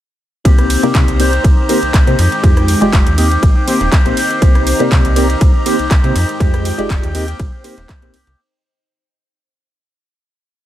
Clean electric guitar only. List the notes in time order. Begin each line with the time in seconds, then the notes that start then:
0.45 D#3 A#3 C4 G4
0.83 A#3 C4 G4
0.95 A#3 C4 G4
1.19 D#3 A#3 C4 G4
1.32 A#3 C4 G4
1.57 A#3 C4 G4
1.68 D#3 A#3 C4 G4
1.93 D#3 G4
2.18 D#3 G#3 C4 G4
2.31 G#3 C4 G4
2.44 G#3 G4
2.81 G#3 C4 G4
2.93 D#3 G#3 C4 G4
3.17 D#3 A#3 C4 G4
3.31 A#3 C4 G4
3.55 A#3 C4 G4
3.67 D#3 A#3 C4 G4
3.93 A#3 C4 G4
4.16 D#3 A#3 C4 G4
4.30 A#3 C4 G4
4.41 D#3 A#3 C4 G4
4.79 A#3 C4 G4
4.91 D#3 A#3 C4 G4
5.16 D#3 A#3 C4 G4
5.29 A#3 C4 G4
5.54 A#3 C4 G4
5.65 D#3 A#3 C4 G4
5.90 D#3 C4 G4
6.15 D#3 G#3 C4 G4
6.28 G#3 C4 G4
6.40 D#3 G#3 C4 G4
6.78 G#3 C4 G4
6.90 G#3 C4 G4
7.14 D#3 A#3 C4 G4
7.27 A#3 C4 G4
7.52 A#3 C4 G4
7.64 D#3 A#3 C4 G4
8.13 D#3 A#3 C4 G4
8.27 A#3 C4 G4